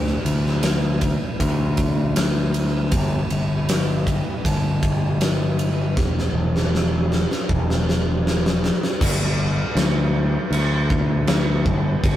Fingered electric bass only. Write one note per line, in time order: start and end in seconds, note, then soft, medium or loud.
0.00 0.17 D2 loud
0.25 1.16 D2 medium
1.40 2.93 D2 loud
2.92 3.22 G1 loud
3.31 4.21 G1 loud
4.45 5.97 G1 loud
5.97 6.27 E1 loud
6.33 7.24 E1 loud
7.49 8.69 E1 loud
9.01 9.61 G1 loud
9.75 10.35 D2 medium
10.51 11.67 D2 loud
11.66 11.95 G1 loud
12.03 12.16 G1 loud